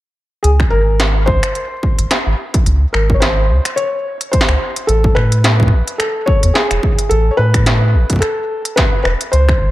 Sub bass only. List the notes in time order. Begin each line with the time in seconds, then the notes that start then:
0.44 C#2
0.72 G#1
1.27 C#2
1.99 G#1
2.26 G#1
2.66 C#2
2.94 G#1
3.50 C#2
4.49 C#2
4.89 A1
5.16 A2
5.72 A1
6.43 E2
6.71 E1
7.11 A1
7.39 A2
7.94 A1
9.05 E1
9.33 C#2
9.61 G#1